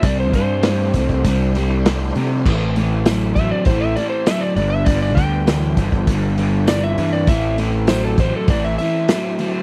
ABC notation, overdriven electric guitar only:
X:1
M:4/4
L:1/8
Q:1/4=100
K:Am
V:1 name="Overdriven electric guitar" clef=bass
[C,G,] [C,G,] [C,A,] [C,A,] [C,G,] [C,G,] [C,A,] [C,A,] | [A,,E,] [A,,E,] [A,,^F,] [A,,F,] [A,,E,] [A,,E,] [A,,F,] [G,,D,] | [G,,D,] [G,,D,] [G,,E,] [G,,E,] [G,,D,] [G,,D,] [G,,E,] [G,,E,] | [A,,E,] [A,,E,] [A,,^F,] [A,,F,] [A,,E,] [A,,E,] [A,,F,] [A,,F,] |]